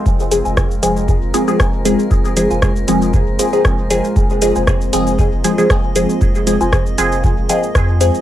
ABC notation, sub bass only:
X:1
M:4/4
L:1/16
Q:"Swing 16ths" 1/4=117
K:Fm
V:1 name="Sub bass" clef=bass
F,,,3 F,,,3 F,,,3 F,,, z2 F,,,3 z | F,,,3 F,,,3 F,,,3 F,,, z2 F,,,3 z | F,,,3 F,,,3 F,,,3 F,,, z2 F,,,3 z | F,,,3 F,,,3 F,,,3 F,,, z2 F,,3 z |]